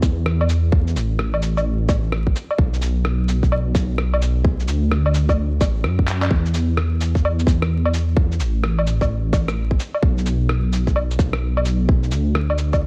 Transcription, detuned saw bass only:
0.02 E2
0.95 A1
2.59 B1
3.75 B1
4.67 D2
5.61 A1
5.84 F#2
6.30 E2
7.47 E2
8.40 A1
10.02 B1
11.19 B1
12.12 D2

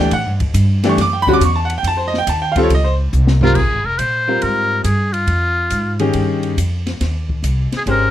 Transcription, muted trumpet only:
3.44 F4
3.55 G#4
3.86 A#4
3.98 C5
4.42 A#4
4.83 G#4
5.13 F4
7.77 G#4
7.91 A#4

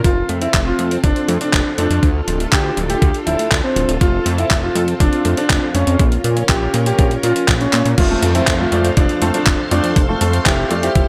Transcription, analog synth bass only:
0.04 F1
0.29 F2
0.54 F1
0.79 F2
1.04 F1
1.28 F2
1.53 F1
1.78 F2
1.90 F2
2.03 D2
2.28 D1
2.52 D2
2.77 D1
3.02 D2
3.27 D1
3.52 D2
3.76 D1
3.89 D1
4.01 F1
4.26 F2
4.51 F1
4.75 F2
5.00 F1
5.25 F2
5.50 F1
5.75 F2
5.87 F2
6.00 A#1
6.24 A#2
6.49 A#1
6.74 A#2
6.99 A#1
7.24 A#2
7.48 A#1
7.73 A#2
7.85 A#2
7.98 F1
8.23 F2
8.48 F1
8.72 F2
8.97 F1
9.22 F2
9.47 F1
9.71 F2
9.84 F2
9.96 F1
10.21 F2
10.46 F1
10.71 F2
10.96 F1

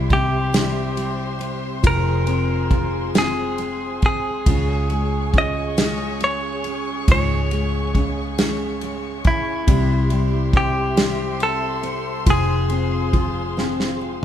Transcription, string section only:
Already playing: G4 C5 E5 C6
1.84 G#4 G#5
4.44 C#5 C#6
9.69 G4 C5 E5 C6
12.27 G#4 F5

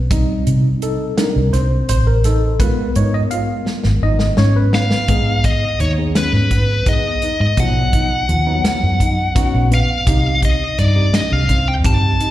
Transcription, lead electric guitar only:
4.75 F5
5.45 D#5
5.81 C#5
6.17 B4
6.89 D#5
7.41 D#5
7.60 F#5
9.74 F5
10.45 D#5
10.79 D5
11.15 D#5
11.33 F5
11.68 G5
11.86 A5

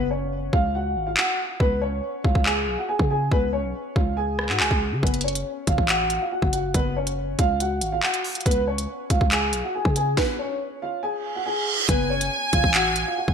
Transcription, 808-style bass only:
Already playing: F#1
0.53 C#2
0.96 G#1
1.60 C#2
2.24 C#2
2.35 C#2
2.67 B1
2.99 C#3
3.32 C#2
3.64 B1
3.96 C#2
4.49 G#2
4.60 C#2
4.71 C#2
4.92 C#3
5.03 F#1
5.67 F#1
5.78 A1
6.42 F#1
6.74 F#1
7.39 C#2
7.82 G#1
8.46 C#2
9.10 C#2
9.21 C#2
9.53 B1
9.85 C#3
11.89 F#1
12.53 F#1
12.64 A1
13.28 F#1

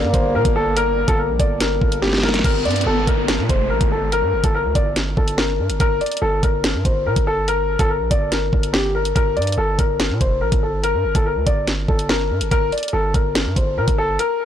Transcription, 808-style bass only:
0.03 G2
0.14 G1
0.35 A#2
0.45 G1
1.08 G1
1.29 A#1
1.40 G1
1.81 G1
2.44 G1
2.65 G2
2.86 G1
3.07 G1
3.39 A#2
3.49 F1
3.70 A1
3.81 G1
4.23 G2
4.33 G1
4.44 G1
4.65 D2
4.75 G1
5.17 G1
5.59 G2
5.70 G1
5.80 G1
6.22 G1
6.43 G1
6.74 G2
6.85 G1
7.06 A#2
7.16 G1
7.79 G1
8.00 A#1
8.11 G1
8.53 G1
9.16 G1
9.37 G2
9.58 G1
9.79 G1
10.10 A#2
10.21 F1
10.42 A1
10.52 G1
10.94 G2
11.05 G1
11.15 G1
11.36 D2
11.47 G1
11.88 G1
12.30 G2
12.41 G1
12.51 G1
12.93 G1
13.14 G1
13.46 G2
13.56 G1
13.77 A#2
13.88 G1

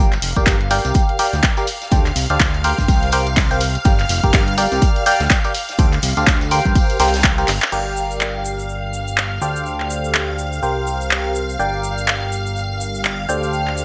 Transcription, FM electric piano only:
0.00 G4 A#4 D5 F5 G5
0.36 G4 A#4 D5 F5 G5
0.71 G4 A#4 D5 F5 G5
1.19 G4 A#4 D5 F5 G5
1.57 G4 A#4 D5 F5 G5
1.92 G4 A4 C5 D5 G5
2.30 G4 A4 C5 D5 F5
2.64 G4 A#4 C5 F5 G5
3.13 G4 A#4 C5 F5 G5
3.51 G4 A#4 C5 F5 G5
3.85 G4 A#4 D5 F5 G5
4.24 G4 A#4 D5 F5 G5
4.58 G4 A#4 D5 F5 G5
5.06 G4 A#4 D5 F5 G5
5.45 G4 A#4 D5 F5 G5
5.79 G4 A4 C5 D5 G5
6.17 G4 A4 C5 D5 F5
6.51 G4 A#4 C5 F5 G5
7.00 G4 A#4 C5 F5 G5
7.38 G4 A#4 C5 F5 G5
7.72 G4 A#4 D5 F5 G5
9.42 G4 A4 C5 D5 G5
10.63 G4 A#4 C5 F5 G5
11.59 G4 A#4 D5 F5 G5
13.29 G4 A4 C5 D5 G5

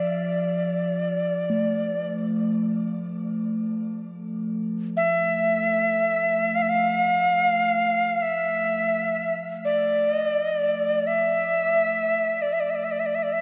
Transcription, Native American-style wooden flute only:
Already playing: D5
4.97 E5
6.55 F5
6.62 E5
6.69 F5
8.22 E5
9.65 D5
10.14 D#5
10.27 D5
10.42 D#5
10.55 D5
11.07 E5
12.42 D5
12.53 E5
12.60 D5
12.70 E5
12.75 D5
12.84 E5
12.92 D5
13.00 E5
13.06 D5
13.15 E5
13.23 D5
13.33 E5

